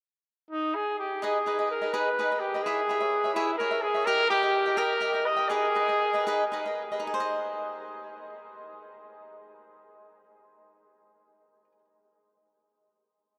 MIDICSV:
0, 0, Header, 1, 3, 480
1, 0, Start_track
1, 0, Tempo, 475436
1, 1230, Time_signature, 6, 3, 24, 8
1, 4584, Tempo, 490196
1, 6024, Tempo, 525394
1, 6984, Tempo, 541028
1, 12594, End_track
2, 0, Start_track
2, 0, Title_t, "Cavaquinho"
2, 0, Program_c, 0, 24
2, 1233, Note_on_c, 0, 63, 61
2, 1242, Note_on_c, 0, 68, 60
2, 1243, Note_on_c, 0, 71, 59
2, 1249, Note_on_c, 0, 75, 69
2, 1380, Note_off_c, 0, 63, 0
2, 1384, Note_off_c, 0, 68, 0
2, 1385, Note_off_c, 0, 71, 0
2, 1388, Note_off_c, 0, 75, 0
2, 1474, Note_on_c, 0, 63, 38
2, 1482, Note_on_c, 0, 68, 44
2, 1487, Note_on_c, 0, 71, 51
2, 1489, Note_on_c, 0, 75, 44
2, 1589, Note_off_c, 0, 75, 0
2, 1591, Note_off_c, 0, 71, 0
2, 1595, Note_off_c, 0, 63, 0
2, 1599, Note_off_c, 0, 68, 0
2, 1601, Note_on_c, 0, 75, 40
2, 1603, Note_on_c, 0, 71, 40
2, 1616, Note_on_c, 0, 68, 35
2, 1742, Note_off_c, 0, 75, 0
2, 1743, Note_off_c, 0, 71, 0
2, 1749, Note_off_c, 0, 68, 0
2, 1833, Note_on_c, 0, 75, 39
2, 1838, Note_on_c, 0, 71, 36
2, 1848, Note_on_c, 0, 68, 34
2, 1942, Note_off_c, 0, 68, 0
2, 1947, Note_off_c, 0, 71, 0
2, 1950, Note_off_c, 0, 75, 0
2, 1954, Note_on_c, 0, 68, 68
2, 1955, Note_on_c, 0, 63, 68
2, 1959, Note_on_c, 0, 71, 67
2, 1962, Note_on_c, 0, 75, 76
2, 2102, Note_off_c, 0, 63, 0
2, 2102, Note_off_c, 0, 68, 0
2, 2105, Note_off_c, 0, 71, 0
2, 2106, Note_off_c, 0, 75, 0
2, 2208, Note_on_c, 0, 63, 51
2, 2213, Note_on_c, 0, 71, 47
2, 2216, Note_on_c, 0, 68, 51
2, 2226, Note_on_c, 0, 75, 53
2, 2323, Note_off_c, 0, 63, 0
2, 2324, Note_off_c, 0, 75, 0
2, 2326, Note_off_c, 0, 71, 0
2, 2327, Note_off_c, 0, 68, 0
2, 2336, Note_on_c, 0, 75, 38
2, 2341, Note_on_c, 0, 71, 40
2, 2347, Note_on_c, 0, 68, 31
2, 2470, Note_off_c, 0, 75, 0
2, 2473, Note_off_c, 0, 71, 0
2, 2476, Note_off_c, 0, 68, 0
2, 2567, Note_on_c, 0, 75, 42
2, 2578, Note_on_c, 0, 71, 40
2, 2585, Note_on_c, 0, 68, 35
2, 2680, Note_off_c, 0, 68, 0
2, 2680, Note_off_c, 0, 75, 0
2, 2685, Note_off_c, 0, 71, 0
2, 2685, Note_on_c, 0, 64, 64
2, 2692, Note_on_c, 0, 68, 58
2, 2697, Note_on_c, 0, 76, 68
2, 2698, Note_on_c, 0, 73, 64
2, 2826, Note_off_c, 0, 64, 0
2, 2830, Note_off_c, 0, 68, 0
2, 2832, Note_off_c, 0, 73, 0
2, 2832, Note_off_c, 0, 76, 0
2, 2919, Note_on_c, 0, 64, 42
2, 2926, Note_on_c, 0, 68, 42
2, 2933, Note_on_c, 0, 73, 50
2, 2933, Note_on_c, 0, 76, 49
2, 3021, Note_off_c, 0, 76, 0
2, 3031, Note_off_c, 0, 73, 0
2, 3033, Note_on_c, 0, 76, 48
2, 3036, Note_off_c, 0, 68, 0
2, 3037, Note_off_c, 0, 64, 0
2, 3043, Note_on_c, 0, 73, 40
2, 3048, Note_on_c, 0, 68, 34
2, 3177, Note_off_c, 0, 76, 0
2, 3181, Note_off_c, 0, 73, 0
2, 3184, Note_off_c, 0, 68, 0
2, 3270, Note_on_c, 0, 76, 39
2, 3282, Note_on_c, 0, 73, 38
2, 3287, Note_on_c, 0, 68, 29
2, 3381, Note_off_c, 0, 73, 0
2, 3384, Note_off_c, 0, 68, 0
2, 3387, Note_off_c, 0, 76, 0
2, 3392, Note_on_c, 0, 64, 62
2, 3393, Note_on_c, 0, 73, 77
2, 3396, Note_on_c, 0, 68, 79
2, 3399, Note_on_c, 0, 76, 68
2, 3537, Note_off_c, 0, 64, 0
2, 3537, Note_off_c, 0, 73, 0
2, 3539, Note_off_c, 0, 68, 0
2, 3540, Note_off_c, 0, 76, 0
2, 3634, Note_on_c, 0, 64, 45
2, 3634, Note_on_c, 0, 68, 49
2, 3643, Note_on_c, 0, 73, 48
2, 3648, Note_on_c, 0, 76, 46
2, 3733, Note_off_c, 0, 76, 0
2, 3741, Note_off_c, 0, 73, 0
2, 3743, Note_off_c, 0, 68, 0
2, 3745, Note_on_c, 0, 76, 42
2, 3751, Note_off_c, 0, 64, 0
2, 3753, Note_on_c, 0, 73, 32
2, 3755, Note_on_c, 0, 68, 35
2, 3889, Note_off_c, 0, 76, 0
2, 3894, Note_off_c, 0, 73, 0
2, 3895, Note_off_c, 0, 68, 0
2, 3982, Note_on_c, 0, 76, 43
2, 3998, Note_on_c, 0, 73, 40
2, 3999, Note_on_c, 0, 68, 34
2, 4103, Note_off_c, 0, 76, 0
2, 4107, Note_off_c, 0, 68, 0
2, 4108, Note_on_c, 0, 67, 63
2, 4111, Note_off_c, 0, 73, 0
2, 4111, Note_on_c, 0, 70, 76
2, 4116, Note_on_c, 0, 79, 70
2, 4118, Note_on_c, 0, 75, 80
2, 4253, Note_off_c, 0, 67, 0
2, 4255, Note_off_c, 0, 70, 0
2, 4257, Note_off_c, 0, 79, 0
2, 4258, Note_off_c, 0, 75, 0
2, 4344, Note_on_c, 0, 67, 42
2, 4349, Note_on_c, 0, 70, 51
2, 4357, Note_on_c, 0, 75, 46
2, 4357, Note_on_c, 0, 79, 45
2, 4457, Note_off_c, 0, 79, 0
2, 4462, Note_off_c, 0, 75, 0
2, 4466, Note_off_c, 0, 67, 0
2, 4468, Note_off_c, 0, 70, 0
2, 4469, Note_on_c, 0, 79, 47
2, 4474, Note_on_c, 0, 75, 42
2, 4481, Note_on_c, 0, 70, 42
2, 4611, Note_off_c, 0, 79, 0
2, 4613, Note_off_c, 0, 75, 0
2, 4617, Note_off_c, 0, 70, 0
2, 4699, Note_on_c, 0, 79, 51
2, 4707, Note_on_c, 0, 75, 41
2, 4714, Note_on_c, 0, 70, 38
2, 4800, Note_off_c, 0, 70, 0
2, 4806, Note_off_c, 0, 79, 0
2, 4808, Note_off_c, 0, 75, 0
2, 4808, Note_on_c, 0, 67, 65
2, 4812, Note_on_c, 0, 70, 70
2, 4818, Note_on_c, 0, 79, 83
2, 4819, Note_on_c, 0, 75, 72
2, 4957, Note_off_c, 0, 67, 0
2, 4959, Note_off_c, 0, 70, 0
2, 4962, Note_off_c, 0, 79, 0
2, 4963, Note_off_c, 0, 75, 0
2, 5038, Note_on_c, 0, 67, 55
2, 5043, Note_on_c, 0, 70, 47
2, 5050, Note_on_c, 0, 75, 55
2, 5053, Note_on_c, 0, 79, 54
2, 5157, Note_off_c, 0, 79, 0
2, 5166, Note_off_c, 0, 67, 0
2, 5166, Note_off_c, 0, 75, 0
2, 5169, Note_off_c, 0, 70, 0
2, 5169, Note_on_c, 0, 79, 37
2, 5177, Note_on_c, 0, 75, 40
2, 5184, Note_on_c, 0, 70, 33
2, 5315, Note_off_c, 0, 79, 0
2, 5319, Note_off_c, 0, 75, 0
2, 5322, Note_off_c, 0, 70, 0
2, 5392, Note_on_c, 0, 79, 47
2, 5399, Note_on_c, 0, 75, 46
2, 5410, Note_on_c, 0, 70, 36
2, 5519, Note_on_c, 0, 63, 68
2, 5522, Note_off_c, 0, 79, 0
2, 5524, Note_off_c, 0, 70, 0
2, 5525, Note_off_c, 0, 75, 0
2, 5528, Note_on_c, 0, 68, 69
2, 5529, Note_on_c, 0, 71, 62
2, 5536, Note_on_c, 0, 75, 73
2, 5675, Note_off_c, 0, 63, 0
2, 5680, Note_off_c, 0, 68, 0
2, 5680, Note_off_c, 0, 71, 0
2, 5684, Note_off_c, 0, 75, 0
2, 5767, Note_on_c, 0, 63, 39
2, 5774, Note_on_c, 0, 68, 38
2, 5778, Note_on_c, 0, 71, 49
2, 5783, Note_on_c, 0, 75, 52
2, 5885, Note_off_c, 0, 75, 0
2, 5893, Note_off_c, 0, 71, 0
2, 5897, Note_off_c, 0, 63, 0
2, 5897, Note_on_c, 0, 75, 39
2, 5900, Note_off_c, 0, 68, 0
2, 5905, Note_on_c, 0, 71, 36
2, 5911, Note_on_c, 0, 68, 38
2, 6047, Note_off_c, 0, 75, 0
2, 6051, Note_off_c, 0, 71, 0
2, 6053, Note_off_c, 0, 68, 0
2, 6136, Note_on_c, 0, 75, 47
2, 6146, Note_on_c, 0, 71, 47
2, 6154, Note_on_c, 0, 68, 38
2, 6250, Note_off_c, 0, 68, 0
2, 6256, Note_off_c, 0, 71, 0
2, 6256, Note_off_c, 0, 75, 0
2, 6257, Note_on_c, 0, 63, 68
2, 6261, Note_on_c, 0, 68, 73
2, 6266, Note_on_c, 0, 71, 77
2, 6272, Note_on_c, 0, 75, 80
2, 6403, Note_off_c, 0, 63, 0
2, 6405, Note_off_c, 0, 68, 0
2, 6408, Note_off_c, 0, 71, 0
2, 6411, Note_off_c, 0, 75, 0
2, 6487, Note_on_c, 0, 63, 50
2, 6498, Note_on_c, 0, 68, 54
2, 6501, Note_on_c, 0, 71, 57
2, 6504, Note_on_c, 0, 75, 55
2, 6602, Note_off_c, 0, 75, 0
2, 6606, Note_off_c, 0, 71, 0
2, 6613, Note_on_c, 0, 75, 46
2, 6614, Note_off_c, 0, 63, 0
2, 6617, Note_on_c, 0, 71, 34
2, 6619, Note_off_c, 0, 68, 0
2, 6630, Note_on_c, 0, 68, 35
2, 6762, Note_off_c, 0, 75, 0
2, 6763, Note_off_c, 0, 71, 0
2, 6770, Note_off_c, 0, 68, 0
2, 6851, Note_on_c, 0, 75, 44
2, 6858, Note_on_c, 0, 71, 43
2, 6866, Note_on_c, 0, 68, 36
2, 6924, Note_on_c, 0, 63, 63
2, 6980, Note_off_c, 0, 75, 0
2, 6983, Note_off_c, 0, 68, 0
2, 6983, Note_off_c, 0, 71, 0
2, 6993, Note_on_c, 0, 68, 59
2, 7052, Note_on_c, 0, 72, 75
2, 7108, Note_on_c, 0, 75, 72
2, 11046, Note_off_c, 0, 63, 0
2, 11114, Note_off_c, 0, 68, 0
2, 11172, Note_off_c, 0, 72, 0
2, 11228, Note_off_c, 0, 75, 0
2, 12594, End_track
3, 0, Start_track
3, 0, Title_t, "Trumpet"
3, 0, Program_c, 1, 56
3, 511, Note_on_c, 1, 63, 76
3, 753, Note_on_c, 1, 68, 70
3, 768, Note_off_c, 1, 63, 0
3, 991, Note_off_c, 1, 68, 0
3, 996, Note_on_c, 1, 67, 61
3, 1236, Note_on_c, 1, 68, 73
3, 1251, Note_off_c, 1, 67, 0
3, 1719, Note_off_c, 1, 68, 0
3, 1725, Note_on_c, 1, 70, 67
3, 1952, Note_on_c, 1, 71, 77
3, 1967, Note_off_c, 1, 70, 0
3, 2416, Note_on_c, 1, 67, 64
3, 2431, Note_off_c, 1, 71, 0
3, 2652, Note_on_c, 1, 68, 79
3, 2667, Note_off_c, 1, 67, 0
3, 3357, Note_off_c, 1, 68, 0
3, 3363, Note_on_c, 1, 64, 71
3, 3601, Note_off_c, 1, 64, 0
3, 3611, Note_on_c, 1, 70, 78
3, 3851, Note_on_c, 1, 68, 78
3, 3866, Note_off_c, 1, 70, 0
3, 4094, Note_on_c, 1, 70, 96
3, 4109, Note_off_c, 1, 68, 0
3, 4332, Note_off_c, 1, 70, 0
3, 4338, Note_on_c, 1, 67, 85
3, 4818, Note_on_c, 1, 70, 83
3, 4832, Note_off_c, 1, 67, 0
3, 5286, Note_on_c, 1, 75, 72
3, 5300, Note_off_c, 1, 70, 0
3, 5513, Note_on_c, 1, 68, 84
3, 5528, Note_off_c, 1, 75, 0
3, 6493, Note_off_c, 1, 68, 0
3, 12594, End_track
0, 0, End_of_file